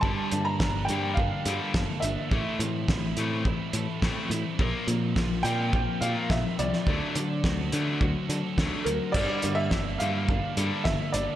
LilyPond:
<<
  \new Staff \with { instrumentName = "Upright piano" } { \time 4/4 \key g \dorian \tempo 4 = 106 a''8. bes''8. g''8 f''4. e''8~ | e''8 r2. r8 | r4. g''4 f''8 e''8 d''8~ | d''4. r2 bes'8 |
d''8. e''8. f''4. e''8 d''8 | }
  \new Staff \with { instrumentName = "Distorted electric guitar" } { \time 4/4 \key g \dorian g8 bes8 d'8 bes8 d'8 a'8 bes8 d'8 | a8 c'8 e'8 c'8 e'8 a'8 c'8 e'8 | bes8 c'8 f'8 c'8 f'8 bes'8 c'8 f'8 | d8 d'8 fis'8 d'8 fis'8 a'8 d'8 fis'8 |
g8 bes8 d'8 bes8 d'8 a'8 bes8 d'8 | }
  \new Staff \with { instrumentName = "Overdriven electric guitar" } { \clef bass \time 4/4 \key g \dorian <g, d g>8 <g, d>8 <g, d>8 <g, d g>8 <g, d>8 <g, d g>8 <g, d>8 <g, d>8 | <a, e a>8 <a, e>8 <a, e>8 <a, e a>8 <a, e>8 <a, e>8 <a, e a>8 <a, e>8 | <bes, f bes>8 <bes, f>8 <bes, f>8 <bes, f bes>8 <bes, f>8 <bes, f bes>8 <bes, f>8 <bes, f>8 | <d fis a>8 <d fis>8 <d fis>8 <d fis a>8 <d fis>8 <d fis>8 <d fis a>8 <d fis>8 |
<g, d g>8 <g, d>8 <g, d>8 <g, d g>8 <g, d>8 <g, d g>8 <g, d>8 <g, d>8 | }
  \new Staff \with { instrumentName = "Picked electric bass" } { \clef bass \time 4/4 \key g \dorian g,,16 r16 g,8 g,,8 g,8 g,,16 r16 g,16 r16 g,,16 r16 g,,16 r16 | a,,16 r16 a,8 a,,8 a,8 a,,16 r16 a,16 r16 a,,16 r16 a,16 r16 | bes,,16 r16 bes,8 bes,,8 bes,8 bes,,16 r16 bes,16 r16 bes,,16 r16 c,16 r16 | d,16 r16 d8 d,8 d8 d,16 r16 d16 r16 d,16 r16 d,16 r16 |
g,,16 r16 g,8 g,,8 g,8 g,,16 r16 g,16 r16 g,,16 r16 g,,16 r16 | }
  \new DrumStaff \with { instrumentName = "Drums" } \drummode { \time 4/4 bd8 hh8 <bd sn>8 hh8 bd8 hh8 <bd sn>8 hh8 | bd8 hh8 <bd sn>8 hh8 bd8 hh8 <bd sn>8 hh8 | bd8 hh8 <bd sn>8 hh8 bd8 hh8 <bd sn>8 hh16 sn16 | bd8 hh8 <bd sn>8 hh8 bd8 hh8 <bd sn>8 hh8 |
<cymc bd>8 hh8 <bd sn>8 hh8 bd8 hh8 <bd sn>8 hh8 | }
>>